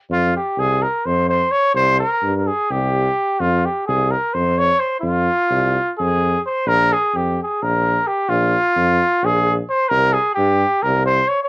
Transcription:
0.10 F2 F4
0.36 G4
0.58 C2 G#4
0.82 A#4
1.06 F2 C5
1.29 C5
1.51 C#5
1.75 C2 C5
2.00 A#4
2.22 G2
2.37 A#4
2.47 G#4
2.71 C2 G4
3.40 F2 F4
3.65 G4
3.87 C2 G#4
4.11 A#4
4.34 F2 C5
4.58 C#5
4.79 C5
5.01 F2 F4
5.51 C2
5.98 F2 G#4
6.46 C5
6.66 A#1 A#4
6.93 G#4
7.14 F2 G4
7.43 G#4
7.62 A#1 A#4
8.07 G4
8.29 A#1 F4
8.77 F2
9.23 A#1 G#4
9.69 C5
9.89 C2 A#4
10.13 G#4
10.35 G2 G4
10.83 C2 A#4
11.06 C5
11.28 C#5
11.43 C#5

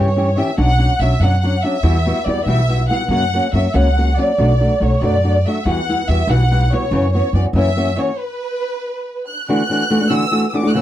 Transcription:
Already playing: G2 C#5
0.16 E3 C#4 E4 G4
0.37 E3 C#4 E4 G4 E5
0.57 B1 B2 F#3 C#4 D4 F#4 F#5
0.78 F#3 C#4 D4 F#4
0.99 B1 F#3 C#4 D4 F#4 E5
1.20 F#2 B2 F#3 C#4 D4 F#4 F#5
1.41 F#3 C#4 D4 F#4 F#5
1.62 F#3 C#4 D4 F#4 E5
1.83 E2 E3 G3 B3 E4 F#4
2.05 G3 B3 E4 F#4
2.25 E2 G3 B3 E4 F#4 D5
2.45 B1 E3 G3 B3 E4 F#4 E5
2.68 G3 B3 E4 F#4
2.89 G3 B3 E4 F#4 F#5
3.08 F#2 C#3 F#3 A#3 C#4 F#4 F#5
3.33 F#3 A#3 C#4 F#4
3.53 F#2 F#3 A#3 C#4 F#4 E5
3.74 C#2 F#2 C#3 F#3 A#3 C#4 F#4 F#5
3.97 F#3 A#3 C#4 F#4
4.18 F#3 A#3 C#4 F#4 D5
4.38 B1 B2 F#3 A3 D4 F#4
4.59 F#3 A3 D4 F#4
4.80 B1 F#3 A3 D4 F#4 C#5
5.00 F#2 B2 F#3 A3 D4 F#4 D5
5.23 F#3 A3 D4 F#4
5.46 F#3 A3 D4 F#4 E5
5.65 E2 E3 G3 B3 E4 F#4 F#5
5.89 G3 B3 E4 F#4
6.08 E2 G3 B3 E4 F#4 E5
6.27 B1 E3 G3 B3 E4 F#4 F#5
6.51 G3 B3 E4 F#4
6.72 G3 B3 E4 F#4 C#5
6.91 F#2 C#3 E3 B3 C#4 F#4
7.12 E3 B3 C#4 F#4 C#5
7.33 F#2 E3 B3 C#4 D5
7.37 F#4
7.53 F#2 C#3 E3 A#3 C#4 F#4 E5
7.76 E3 A#3 C#4 F#4
7.97 E3 A#3 C#4 F#4 C#5
8.19 B4
9.27 F#6
9.48 D3 E3 A3 D4 F#4 F#6
9.69 E3 A3 D4 F#4
9.90 E3 A3 D4 F#4
10.00 A3 D4 F#4
10.10 D3 E3 A3 D4 F#4 E6
10.31 E3 A3 D4 F#4
10.49 E3 E6
10.54 A3 D4 F#4 D6
10.63 A3 D4 F#4
10.69 F#6
10.74 F#2 C#3 E3 A#3 C#4 F#4 E6

